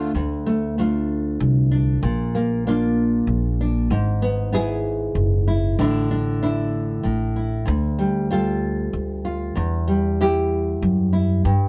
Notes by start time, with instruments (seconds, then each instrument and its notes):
Already playing: nylon-string guitar D2 A3 D4 F4, accordion D3 A3 F4
0.15 upright bass D2, nylon-string guitar D2
0.46 nylon-string guitar A3
0.78 nylon-string guitar A3 D4 F4
1.40 upright bass C2
1.71 nylon-string guitar D4
2.03 upright bass A#1, nylon-string guitar A#2
2.35 nylon-string guitar A#3
2.67 nylon-string guitar A#3 D4 F4
3.27 upright bass A#1
3.61 nylon-string guitar D4
3.90 upright bass G#1, nylon-string guitar G#2
4.22 nylon-string guitar B3
4.52 nylon-string guitar B3 E4 G#4
5.15 upright bass F#1
5.48 nylon-string guitar E4
5.79 upright bass A1, nylon-string guitar A2 D3 D4 E4
6.11 nylon-string guitar D4
6.43 nylon-string guitar D4 E4
7.03 upright bass A1, nylon-string guitar A2
7.36 nylon-string guitar E4
7.66 nylon-string guitar D2, upright bass D2
7.99 nylon-string guitar G3
8.31 nylon-string guitar G3 F4 A4
8.93 upright bass D2
9.25 nylon-string guitar F4
9.55 nylon-string guitar E2, upright bass E2
9.88 nylon-string guitar G3
10.21 nylon-string guitar E4 G4
10.82 upright bass F#2
11.13 nylon-string guitar E4
11.45 nylon-string guitar G2, upright bass G2